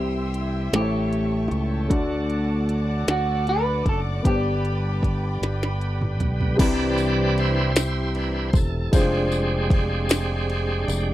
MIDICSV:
0, 0, Header, 1, 7, 480
1, 0, Start_track
1, 0, Key_signature, 0, "major"
1, 0, Tempo, 780234
1, 1172, Time_signature, 6, 3, 24, 8
1, 6853, End_track
2, 0, Start_track
2, 0, Title_t, "String section"
2, 0, Program_c, 0, 48
2, 0, Note_on_c, 0, 76, 67
2, 0, Note_on_c, 0, 79, 55
2, 0, Note_on_c, 0, 84, 59
2, 0, Note_on_c, 0, 88, 69
2, 444, Note_on_c, 0, 85, 61
2, 446, Note_off_c, 0, 84, 0
2, 447, Note_on_c, 0, 81, 51
2, 448, Note_off_c, 0, 88, 0
2, 1149, Note_off_c, 0, 79, 0
2, 1161, Note_off_c, 0, 76, 0
2, 1161, Note_off_c, 0, 85, 0
2, 1170, Note_on_c, 0, 78, 57
2, 1172, Note_on_c, 0, 86, 73
2, 1173, Note_on_c, 0, 74, 67
2, 2590, Note_off_c, 0, 81, 0
2, 2598, Note_off_c, 0, 78, 0
2, 2612, Note_on_c, 0, 79, 57
2, 2618, Note_on_c, 0, 83, 57
2, 4030, Note_off_c, 0, 86, 0
2, 4031, Note_off_c, 0, 74, 0
2, 4039, Note_off_c, 0, 79, 0
2, 4042, Note_off_c, 0, 83, 0
2, 6853, End_track
3, 0, Start_track
3, 0, Title_t, "Clean electric guitar"
3, 0, Program_c, 1, 27
3, 0, Note_on_c, 1, 67, 72
3, 459, Note_off_c, 1, 67, 0
3, 466, Note_on_c, 1, 67, 67
3, 975, Note_off_c, 1, 67, 0
3, 1909, Note_on_c, 1, 66, 78
3, 2125, Note_off_c, 1, 66, 0
3, 2148, Note_on_c, 1, 71, 93
3, 2364, Note_off_c, 1, 71, 0
3, 2394, Note_on_c, 1, 69, 68
3, 2456, Note_off_c, 1, 69, 0
3, 2626, Note_on_c, 1, 67, 68
3, 3796, Note_off_c, 1, 67, 0
3, 6853, End_track
4, 0, Start_track
4, 0, Title_t, "Upright piano"
4, 0, Program_c, 2, 0
4, 0, Control_c, 2, 64, 127
4, 0, Note_on_c, 2, 48, 45
4, 0, Note_on_c, 2, 60, 55
4, 0, Note_on_c, 2, 64, 42
4, 0, Note_on_c, 2, 67, 44
4, 0, Note_on_c, 2, 76, 55
4, 425, Note_off_c, 2, 48, 0
4, 442, Note_off_c, 2, 64, 0
4, 447, Note_off_c, 2, 67, 0
4, 449, Note_off_c, 2, 60, 0
4, 450, Note_on_c, 2, 57, 51
4, 451, Note_on_c, 2, 45, 52
4, 451, Note_on_c, 2, 64, 48
4, 457, Note_on_c, 2, 67, 50
4, 458, Control_c, 2, 64, 0
4, 461, Note_on_c, 2, 72, 47
4, 474, Note_off_c, 2, 76, 0
4, 496, Note_off_c, 2, 72, 0
4, 498, Note_on_c, 2, 73, 60
4, 563, Control_c, 2, 64, 127
4, 1147, Note_off_c, 2, 45, 0
4, 1150, Note_off_c, 2, 57, 0
4, 1159, Note_on_c, 2, 57, 64
4, 1167, Note_on_c, 2, 62, 60
4, 1168, Note_on_c, 2, 50, 65
4, 1169, Note_on_c, 2, 66, 65
4, 1172, Note_off_c, 2, 64, 0
4, 1175, Note_off_c, 2, 67, 0
4, 1176, Note_on_c, 2, 74, 72
4, 1180, Control_c, 2, 64, 0
4, 1195, Note_off_c, 2, 73, 0
4, 1297, Control_c, 2, 64, 127
4, 1866, Note_off_c, 2, 50, 0
4, 2583, Note_off_c, 2, 57, 0
4, 2586, Note_off_c, 2, 62, 0
4, 2587, Note_off_c, 2, 66, 0
4, 2591, Note_off_c, 2, 74, 0
4, 2600, Note_on_c, 2, 59, 55
4, 2608, Note_on_c, 2, 62, 46
4, 2610, Note_on_c, 2, 67, 47
4, 2611, Note_on_c, 2, 43, 52
4, 2620, Control_c, 2, 64, 0
4, 2622, Note_on_c, 2, 72, 48
4, 2657, Note_off_c, 2, 72, 0
4, 2663, Note_on_c, 2, 74, 51
4, 2744, Control_c, 2, 64, 127
4, 3308, Note_off_c, 2, 43, 0
4, 4023, Note_off_c, 2, 59, 0
4, 4027, Note_off_c, 2, 62, 0
4, 4028, Note_off_c, 2, 67, 0
4, 4037, Note_on_c, 2, 55, 59
4, 4047, Note_on_c, 2, 60, 57
4, 4049, Note_on_c, 2, 64, 51
4, 4050, Note_on_c, 2, 48, 66
4, 4054, Note_off_c, 2, 74, 0
4, 4055, Note_on_c, 2, 71, 62
4, 4062, Control_c, 2, 64, 0
4, 4174, Control_c, 2, 64, 127
4, 4748, Note_off_c, 2, 48, 0
4, 5461, Note_off_c, 2, 55, 0
4, 5466, Note_off_c, 2, 60, 0
4, 5467, Note_off_c, 2, 64, 0
4, 5470, Note_off_c, 2, 71, 0
4, 5484, Note_on_c, 2, 56, 64
4, 5488, Note_on_c, 2, 62, 51
4, 5496, Note_on_c, 2, 65, 58
4, 5499, Note_on_c, 2, 72, 72
4, 5501, Control_c, 2, 64, 0
4, 5626, Control_c, 2, 64, 127
4, 6853, Note_off_c, 2, 56, 0
4, 6853, Note_off_c, 2, 62, 0
4, 6853, Note_off_c, 2, 65, 0
4, 6853, Note_off_c, 2, 72, 0
4, 6853, End_track
5, 0, Start_track
5, 0, Title_t, "Tonewheel organ"
5, 0, Program_c, 3, 16
5, 0, Note_on_c, 3, 48, 59
5, 0, Note_on_c, 3, 52, 52
5, 0, Note_on_c, 3, 55, 50
5, 0, Note_on_c, 3, 64, 52
5, 0, Note_on_c, 3, 67, 56
5, 446, Note_off_c, 3, 64, 0
5, 447, Note_off_c, 3, 48, 0
5, 447, Note_on_c, 3, 61, 48
5, 452, Note_on_c, 3, 57, 50
5, 1153, Note_off_c, 3, 55, 0
5, 1159, Note_off_c, 3, 52, 0
5, 1160, Note_off_c, 3, 67, 0
5, 1163, Note_off_c, 3, 61, 0
5, 1165, Note_on_c, 3, 66, 57
5, 1165, Note_on_c, 3, 69, 64
5, 1167, Note_on_c, 3, 50, 58
5, 1170, Note_on_c, 3, 54, 53
5, 2592, Note_off_c, 3, 57, 0
5, 2595, Note_off_c, 3, 66, 0
5, 2596, Note_off_c, 3, 69, 0
5, 2598, Note_off_c, 3, 54, 0
5, 2614, Note_on_c, 3, 71, 62
5, 2616, Note_on_c, 3, 67, 50
5, 2617, Note_on_c, 3, 55, 57
5, 2618, Note_on_c, 3, 59, 49
5, 4027, Note_off_c, 3, 50, 0
5, 4040, Note_off_c, 3, 71, 0
5, 4041, Note_off_c, 3, 67, 0
5, 4042, Note_off_c, 3, 55, 0
5, 4042, Note_off_c, 3, 59, 0
5, 4057, Note_on_c, 3, 62, 62
5, 4059, Note_on_c, 3, 52, 54
5, 4060, Note_on_c, 3, 71, 74
5, 4061, Note_on_c, 3, 60, 49
5, 4061, Note_on_c, 3, 67, 70
5, 4063, Note_on_c, 3, 74, 115
5, 4538, Note_off_c, 3, 67, 0
5, 4545, Note_on_c, 3, 67, 67
5, 4548, Note_on_c, 3, 64, 69
5, 4549, Note_on_c, 3, 72, 108
5, 4553, Note_off_c, 3, 74, 0
5, 4751, Note_off_c, 3, 62, 0
5, 4752, Note_off_c, 3, 52, 0
5, 4753, Note_off_c, 3, 60, 0
5, 4753, Note_off_c, 3, 71, 0
5, 5016, Note_on_c, 3, 52, 47
5, 5017, Note_on_c, 3, 71, 50
5, 5018, Note_on_c, 3, 62, 58
5, 5231, Note_off_c, 3, 52, 0
5, 5232, Note_off_c, 3, 62, 0
5, 5232, Note_off_c, 3, 71, 0
5, 5235, Note_off_c, 3, 67, 0
5, 5237, Note_off_c, 3, 64, 0
5, 5268, Note_on_c, 3, 69, 91
5, 5283, Note_off_c, 3, 72, 0
5, 5499, Note_on_c, 3, 56, 51
5, 5499, Note_on_c, 3, 67, 59
5, 5502, Note_on_c, 3, 62, 57
5, 5507, Note_on_c, 3, 60, 55
5, 5507, Note_on_c, 3, 68, 83
5, 5508, Note_off_c, 3, 69, 0
5, 6676, Note_off_c, 3, 60, 0
5, 6676, Note_off_c, 3, 68, 0
5, 6853, Note_off_c, 3, 56, 0
5, 6853, Note_off_c, 3, 62, 0
5, 6853, Note_off_c, 3, 67, 0
5, 6853, End_track
6, 0, Start_track
6, 0, Title_t, "Fingered electric bass"
6, 0, Program_c, 4, 33
6, 0, Note_on_c, 4, 36, 90
6, 427, Note_off_c, 4, 36, 0
6, 448, Note_on_c, 4, 33, 74
6, 906, Note_off_c, 4, 33, 0
6, 930, Note_on_c, 4, 37, 69
6, 1152, Note_off_c, 4, 37, 0
6, 1171, Note_on_c, 4, 38, 78
6, 1868, Note_off_c, 4, 38, 0
6, 1894, Note_on_c, 4, 38, 64
6, 2349, Note_off_c, 4, 38, 0
6, 2371, Note_on_c, 4, 30, 75
6, 2593, Note_off_c, 4, 30, 0
6, 2616, Note_on_c, 4, 31, 83
6, 3311, Note_off_c, 4, 31, 0
6, 3333, Note_on_c, 4, 31, 61
6, 3815, Note_off_c, 4, 31, 0
6, 3815, Note_on_c, 4, 35, 70
6, 4036, Note_off_c, 4, 35, 0
6, 4056, Note_on_c, 4, 36, 82
6, 5231, Note_off_c, 4, 36, 0
6, 5249, Note_on_c, 4, 28, 82
6, 5472, Note_off_c, 4, 28, 0
6, 5492, Note_on_c, 4, 29, 82
6, 6668, Note_off_c, 4, 29, 0
6, 6694, Note_on_c, 4, 29, 82
6, 6853, Note_off_c, 4, 29, 0
6, 6853, End_track
7, 0, Start_track
7, 0, Title_t, "Drums"
7, 210, Note_on_c, 9, 42, 42
7, 272, Note_off_c, 9, 42, 0
7, 451, Note_on_c, 9, 42, 77
7, 453, Note_on_c, 9, 38, 82
7, 513, Note_off_c, 9, 42, 0
7, 515, Note_off_c, 9, 38, 0
7, 693, Note_on_c, 9, 42, 44
7, 754, Note_off_c, 9, 42, 0
7, 931, Note_on_c, 9, 42, 38
7, 993, Note_off_c, 9, 42, 0
7, 1171, Note_on_c, 9, 36, 89
7, 1173, Note_on_c, 9, 42, 84
7, 1233, Note_off_c, 9, 36, 0
7, 1235, Note_off_c, 9, 42, 0
7, 1413, Note_on_c, 9, 42, 43
7, 1474, Note_off_c, 9, 42, 0
7, 1655, Note_on_c, 9, 42, 40
7, 1716, Note_off_c, 9, 42, 0
7, 1894, Note_on_c, 9, 42, 70
7, 1896, Note_on_c, 9, 38, 92
7, 1956, Note_off_c, 9, 42, 0
7, 1958, Note_off_c, 9, 38, 0
7, 2135, Note_on_c, 9, 42, 46
7, 2196, Note_off_c, 9, 42, 0
7, 2373, Note_on_c, 9, 36, 67
7, 2374, Note_on_c, 9, 42, 41
7, 2434, Note_off_c, 9, 36, 0
7, 2436, Note_off_c, 9, 42, 0
7, 2614, Note_on_c, 9, 36, 90
7, 2617, Note_on_c, 9, 42, 85
7, 2676, Note_off_c, 9, 36, 0
7, 2678, Note_off_c, 9, 42, 0
7, 2859, Note_on_c, 9, 42, 40
7, 2921, Note_off_c, 9, 42, 0
7, 3093, Note_on_c, 9, 36, 64
7, 3103, Note_on_c, 9, 42, 35
7, 3155, Note_off_c, 9, 36, 0
7, 3165, Note_off_c, 9, 42, 0
7, 3340, Note_on_c, 9, 42, 76
7, 3343, Note_on_c, 9, 38, 45
7, 3402, Note_off_c, 9, 42, 0
7, 3404, Note_off_c, 9, 38, 0
7, 3464, Note_on_c, 9, 38, 46
7, 3525, Note_off_c, 9, 38, 0
7, 3577, Note_on_c, 9, 42, 41
7, 3638, Note_off_c, 9, 42, 0
7, 3700, Note_on_c, 9, 45, 51
7, 3761, Note_off_c, 9, 45, 0
7, 3815, Note_on_c, 9, 42, 41
7, 3817, Note_on_c, 9, 43, 75
7, 3877, Note_off_c, 9, 42, 0
7, 3879, Note_off_c, 9, 43, 0
7, 3940, Note_on_c, 9, 43, 65
7, 4002, Note_off_c, 9, 43, 0
7, 4055, Note_on_c, 9, 36, 106
7, 4056, Note_on_c, 9, 54, 59
7, 4057, Note_on_c, 9, 49, 105
7, 4057, Note_on_c, 9, 51, 78
7, 4117, Note_off_c, 9, 36, 0
7, 4118, Note_off_c, 9, 54, 0
7, 4119, Note_off_c, 9, 49, 0
7, 4119, Note_off_c, 9, 51, 0
7, 4292, Note_on_c, 9, 54, 39
7, 4298, Note_on_c, 9, 51, 36
7, 4353, Note_off_c, 9, 54, 0
7, 4360, Note_off_c, 9, 51, 0
7, 4538, Note_on_c, 9, 51, 38
7, 4600, Note_off_c, 9, 51, 0
7, 4772, Note_on_c, 9, 54, 89
7, 4775, Note_on_c, 9, 51, 64
7, 4777, Note_on_c, 9, 38, 115
7, 4834, Note_off_c, 9, 54, 0
7, 4837, Note_off_c, 9, 51, 0
7, 4839, Note_off_c, 9, 38, 0
7, 5013, Note_on_c, 9, 51, 38
7, 5074, Note_off_c, 9, 51, 0
7, 5249, Note_on_c, 9, 51, 40
7, 5251, Note_on_c, 9, 36, 84
7, 5262, Note_on_c, 9, 54, 51
7, 5310, Note_off_c, 9, 51, 0
7, 5313, Note_off_c, 9, 36, 0
7, 5323, Note_off_c, 9, 54, 0
7, 5493, Note_on_c, 9, 36, 110
7, 5493, Note_on_c, 9, 51, 83
7, 5496, Note_on_c, 9, 54, 57
7, 5554, Note_off_c, 9, 36, 0
7, 5555, Note_off_c, 9, 51, 0
7, 5558, Note_off_c, 9, 54, 0
7, 5731, Note_on_c, 9, 54, 41
7, 5735, Note_on_c, 9, 51, 39
7, 5793, Note_off_c, 9, 54, 0
7, 5796, Note_off_c, 9, 51, 0
7, 5969, Note_on_c, 9, 36, 81
7, 5976, Note_on_c, 9, 51, 40
7, 6031, Note_off_c, 9, 36, 0
7, 6037, Note_off_c, 9, 51, 0
7, 6209, Note_on_c, 9, 54, 99
7, 6217, Note_on_c, 9, 51, 72
7, 6219, Note_on_c, 9, 38, 113
7, 6270, Note_off_c, 9, 54, 0
7, 6279, Note_off_c, 9, 51, 0
7, 6281, Note_off_c, 9, 38, 0
7, 6457, Note_on_c, 9, 51, 43
7, 6519, Note_off_c, 9, 51, 0
7, 6696, Note_on_c, 9, 51, 42
7, 6702, Note_on_c, 9, 54, 54
7, 6757, Note_off_c, 9, 51, 0
7, 6764, Note_off_c, 9, 54, 0
7, 6853, End_track
0, 0, End_of_file